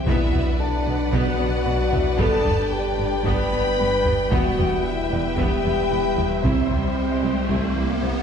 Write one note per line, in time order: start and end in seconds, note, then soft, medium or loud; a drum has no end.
0.06 0.14 B1 medium
0.06 2.21 B1 medium
0.06 0.15 B2 loud
0.06 2.15 F#3 medium
0.06 2.19 F#3 medium
0.06 0.22 B3 medium
0.06 0.31 B3 medium
0.06 4.15 D4 medium
0.06 4.32 D4 medium
0.06 0.59 E4 loud
0.06 4.27 B4 medium
0.06 6.44 B4 medium
0.06 4.32 D5 medium
0.06 0.58 E5 loud
0.06 2.15 F#5 medium
0.06 taiko loud
0.33 0.42 B1 medium
0.33 0.41 B2 medium
0.33 0.41 B3 medium
0.33 0.49 F#4 medium
0.33 taiko low medium
0.59 1.13 D4 medium
0.59 2.15 A4 medium
0.59 1.13 D5 medium
0.59 2.15 A5 medium
0.86 0.94 B1 medium
0.86 0.94 B2 medium
0.86 0.94 B3 medium
0.86 1.02 F#4 medium
1.12 1.21 B1 loud
1.12 1.21 B2 medium
1.12 1.37 B3 loud
1.12 1.29 B3 loud
1.12 2.20 F#4 loud
1.12 2.17 F#5 loud
1.12 taiko medium
1.39 1.47 B1 medium
1.39 1.48 B2 medium
1.39 1.47 B3 medium
1.39 1.55 D4 medium
1.66 1.74 B1 medium
1.66 1.74 B2 medium
1.66 1.74 B3 medium
1.66 1.82 B4 medium
1.92 2.00 B1 medium
1.92 2.01 B2 medium
1.92 2.01 B3 medium
1.92 3.48 E4 medium
1.92 2.08 B4 medium
1.92 3.48 E5 medium
1.92 taiko low medium
2.18 2.27 G1 medium
2.18 4.33 G1 medium
2.18 2.27 G2 medium
2.18 2.35 G3 medium
2.18 8.23 G3 medium
2.18 6.40 G3 medium
2.18 2.44 B3 loud
2.18 2.71 A4 loud
2.18 6.43 G5 medium
2.18 2.72 A5 loud
2.18 taiko loud
2.45 2.54 G1 medium
2.45 2.53 G2 medium
2.45 2.54 B3 medium
2.45 2.61 D4 medium
2.45 taiko low medium
2.72 3.26 G4 loud
2.72 3.25 G5 medium
2.98 3.07 G1 medium
2.98 3.06 G2 medium
2.98 3.08 B3 medium
2.98 3.14 D4 medium
3.25 3.34 G1 loud
3.25 3.33 G2 medium
3.25 3.41 G3 loud
3.25 3.50 B3 medium
3.25 4.30 B4 loud
3.25 4.32 B5 loud
3.25 taiko medium
3.52 3.61 G1 medium
3.52 3.60 G2 medium
3.52 3.60 B3 medium
3.52 3.68 B3 medium
3.79 3.87 G1 medium
3.79 3.87 G2 medium
3.79 3.87 B3 medium
3.79 3.95 G4 medium
4.05 4.13 G1 medium
4.05 4.13 G2 medium
4.05 4.13 B3 medium
4.05 4.21 G4 medium
4.05 taiko low medium
4.31 6.45 E1 medium
4.31 4.40 E1 medium
4.31 4.39 E2 loud
4.31 4.48 E3 medium
4.31 4.56 B3 loud
4.31 6.44 B3 medium
4.31 8.23 E4 medium
4.31 4.84 F#4 loud
4.31 6.40 B4 medium
4.31 8.23 E5 medium
4.31 4.84 F#5 loud
4.31 taiko loud
4.31 riser medium
4.58 4.67 E1 medium
4.58 4.66 E2 medium
4.58 4.74 B3 medium
4.58 4.66 B3 medium
4.58 taiko low medium
4.85 5.38 E4 medium
4.85 5.38 E5 medium
5.11 5.20 E1 medium
5.11 5.19 E2 medium
5.11 5.20 B3 medium
5.11 5.28 B3 medium
5.11 6.66 D5 medium
5.37 5.46 E1 medium
5.37 5.46 E2 medium
5.37 5.54 E3 loud
5.37 5.62 B3 medium
5.37 6.44 G4 loud
5.37 6.44 G5 loud
5.37 taiko medium
5.64 5.72 E1 medium
5.64 5.73 E2 medium
5.64 5.80 G3 medium
5.64 5.72 B3 medium
5.90 5.99 E1 medium
5.90 5.99 E2 medium
5.90 5.98 B3 medium
5.90 6.07 E4 medium
5.90 7.46 B5 medium
6.17 6.25 E1 medium
6.17 6.26 E2 medium
6.17 6.25 B3 medium
6.17 6.33 E4 medium
6.17 taiko low medium
6.44 6.52 C2 medium
6.44 8.23 C2 medium
6.44 6.52 C2 medium
6.44 6.60 C3 medium
6.44 8.23 G3 medium
6.44 8.03 C4 medium
6.44 8.23 C4 medium
6.44 6.69 E4 medium
6.44 8.23 G4 medium
6.44 8.23 C5 medium
6.44 8.00 C5 medium
6.44 8.23 G5 medium
6.44 taiko loud
6.70 6.78 C2 soft
6.70 6.78 C2 medium
6.70 6.86 G3 medium
6.70 6.78 E4 soft
6.70 taiko low medium
7.23 7.31 C2 medium
7.23 7.32 C2 medium
7.23 7.39 G3 medium
7.23 7.31 E4 soft
7.50 7.58 C2 medium
7.50 7.66 C3 medium
7.50 7.75 E4 medium
7.50 taiko medium
7.76 7.84 C2 medium
7.76 7.92 E3 medium
7.76 7.84 E4 medium
8.02 8.11 C2 medium
8.02 8.19 C4 medium
8.02 8.12 E4 soft